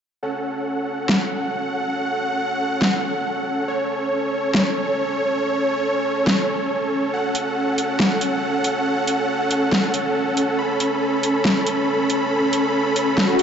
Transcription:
0.23 C#4 A4 F#5
1.09 snare
2.82 snare
3.68 C#5
4.54 snare
6.27 snare
7.13 F#5
7.35 closed hi-hat
7.78 closed hi-hat
8.00 snare
8.21 closed hi-hat
8.64 closed hi-hat
9.08 closed hi-hat
9.51 closed hi-hat
9.72 snare
9.94 closed hi-hat
10.37 closed hi-hat
10.59 B5
10.80 closed hi-hat
11.23 closed hi-hat
11.45 snare
11.67 closed hi-hat
12.10 closed hi-hat
12.53 closed hi-hat
12.96 closed hi-hat
13.18 snare, swell
13.39 closed hi-hat

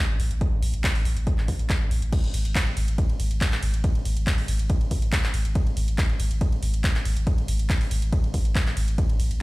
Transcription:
0.09 A1
0.20 A1, open hi-hat
0.31 A1, closed hi-hat
0.41 kick, closed hi-hat
0.52 A1
0.62 A1, open hi-hat
0.74 A1, closed hi-hat
0.84 kick, clap, closed hi-hat
0.95 A1, open hi-hat
1.05 A1, open hi-hat
1.17 A1, closed hi-hat
1.27 kick, closed hi-hat
1.38 A1, clap
1.48 A1, kick, open hi-hat
1.59 A1, closed hi-hat
1.70 kick, clap, closed hi-hat
1.81 A1
1.91 A1, open hi-hat
2.02 A1, closed hi-hat
2.13 kick, closed hi-hat, crash, ride
2.24 G#1, ride
2.34 G#1, open hi-hat, ride
2.45 G#1, closed hi-hat, ride
2.55 kick, clap, closed hi-hat, ride
2.67 G#1, ride
2.77 G#1, open hi-hat, ride
2.88 G#1, closed hi-hat, ride
2.98 kick, closed hi-hat, ride
3.09 G#1, ride
3.20 G#1, open hi-hat, ride
3.31 G#1, closed hi-hat, ride
3.41 kick, clap, closed hi-hat, ride
3.52 G#1, clap, ride
3.63 G#1, open hi-hat, ride
3.74 G#1, closed hi-hat, ride
3.84 kick, closed hi-hat, ride
3.95 G#1, ride
4.05 G#1, open hi-hat, ride
4.17 G#1, closed hi-hat, ride
4.27 kick, clap, closed hi-hat, ride
4.38 G#1, open hi-hat, ride
4.48 G#1, open hi-hat, ride
4.59 G#1, closed hi-hat, ride
4.70 kick, closed hi-hat, ride
4.81 G#1, ride
4.91 G#1, kick, open hi-hat, ride
5.02 G#1, closed hi-hat, ride
5.12 kick, clap, closed hi-hat, ride
5.24 G#1, clap, ride
5.34 G#1, open hi-hat, ride
5.45 G#1, closed hi-hat, ride
5.55 kick, closed hi-hat, ride
5.67 G#1, ride
5.77 G#1, open hi-hat, ride
5.88 G#1, closed hi-hat, ride
5.98 kick, clap, closed hi-hat, ride
6.09 G#1, ride
6.20 G#1, open hi-hat, ride
6.31 G#1, closed hi-hat, ride
6.41 kick, closed hi-hat, ride
6.52 G#1, ride
6.62 G#1, open hi-hat, ride
6.74 G#1, closed hi-hat, ride
6.84 kick, clap, closed hi-hat, ride
6.95 G#1, clap, ride
7.05 G#1, open hi-hat, ride
7.17 G#1, closed hi-hat, ride
7.27 kick, closed hi-hat, ride
7.38 G#1, ride
7.48 G#1, open hi-hat, ride
7.59 G#1, closed hi-hat, ride
7.70 kick, clap, closed hi-hat, ride
7.81 G#1, open hi-hat, ride
7.91 G#1, open hi-hat, ride
8.02 G#1, closed hi-hat, ride
8.13 kick, closed hi-hat, ride
8.24 G#1, ride
8.34 G#1, kick, open hi-hat, ride
8.45 G#1, closed hi-hat, ride
8.55 kick, clap, closed hi-hat, ride
8.67 G#1, clap, ride
8.77 G#1, open hi-hat, ride
8.88 G#1, closed hi-hat, ride
8.98 kick, closed hi-hat, ride
9.09 A1, ride
9.20 A1, open hi-hat, ride
9.31 A1, closed hi-hat, ride

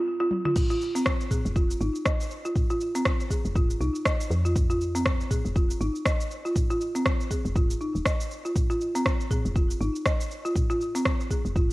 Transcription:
0.20 F4
0.31 high tom
0.45 F4, mid tom
0.56 kick, mid tom, crash, shaker
0.70 F4, shaker
0.81 shaker
0.95 C4, shaker
1.06 kick, cross-stick, shaker
1.20 shaker
1.31 G#4, kick, mid tom, shaker
1.45 F1, shaker
1.56 F4, kick, shaker
1.70 shaker
1.81 G#1 D#4, shaker
1.95 shaker
2.06 D#5, kick, cross-stick, shaker
2.20 shaker
2.31 shaker
2.45 F4, shaker
2.55 kick, mid tom, shaker
2.70 F4, shaker
2.81 shaker
2.95 C4, shaker
3.06 kick, cross-stick, shaker
3.20 shaker
3.31 G#4, kick, shaker
3.45 F1, shaker
3.56 F4, kick, mid tom, shaker
3.70 shaker
3.81 C2 D#4, shaker
3.95 shaker
4.05 D#5, kick, cross-stick, shaker
4.20 shaker
4.30 F2, shaker
4.45 F4, shaker
4.55 kick, mid tom, shaker
4.70 F4, shaker
4.81 shaker
4.95 C4, shaker
5.06 kick, cross-stick, shaker
5.20 shaker
5.31 G#4, kick, mid tom, shaker
5.45 F1, shaker
5.56 F4, kick, shaker
5.70 shaker
5.81 G#1 D#4, shaker
5.95 shaker
6.05 D#5, kick, cross-stick, shaker
6.20 shaker
6.31 shaker
6.45 F4, shaker
6.55 kick, mid tom, shaker
6.70 F4, shaker
6.81 shaker
6.95 C4, shaker
7.06 kick, cross-stick, shaker
7.20 shaker
7.31 G#4, kick, shaker
7.45 F1, shaker
7.56 F4, kick, mid tom, shaker
7.70 shaker
7.81 D#4, shaker
7.95 D#1, shaker
8.06 D#5, kick, cross-stick, shaker
8.21 shaker
8.31 shaker
8.45 F4, shaker
8.55 kick, mid tom, shaker
8.70 F4, shaker
8.81 shaker
8.95 C4, shaker
9.06 kick, cross-stick, shaker
9.21 shaker
9.31 G#4, kick, mid tom, shaker
9.45 F1, shaker
9.56 F4, kick, shaker
9.71 shaker
9.81 G#1 D#4, shaker
9.96 shaker
10.06 D#5, kick, cross-stick, shaker
10.21 shaker
10.31 shaker
10.45 F4, shaker
10.56 kick, mid tom, shaker
10.70 F4, shaker
10.81 shaker
10.95 C4, shaker
11.06 kick, cross-stick, shaker
11.20 shaker
11.31 G#4, kick, shaker
11.45 F1, shaker
11.56 F4, kick, mid tom, shaker

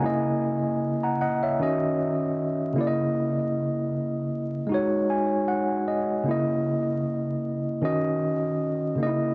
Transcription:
Already playing: G#5
0.00 C#3 A#3 E4
0.06 D#5
1.03 F#5 A#5
1.21 D#5 F#5
1.43 C#5 E5
1.59 D#3 C#4 F#4 D#5
2.73 C#3 A#3
2.78 E4 D5
2.87 D#5
4.67 G#3 D#4
4.72 F#4 C#5
5.10 G#5
5.48 F#5
5.88 D#5
6.23 C#3 A#3
6.28 E4 D#5
7.82 D#3 C#4 F#4 D#5
8.96 C#3 A#3
9.00 D#4 D#5
9.07 E4

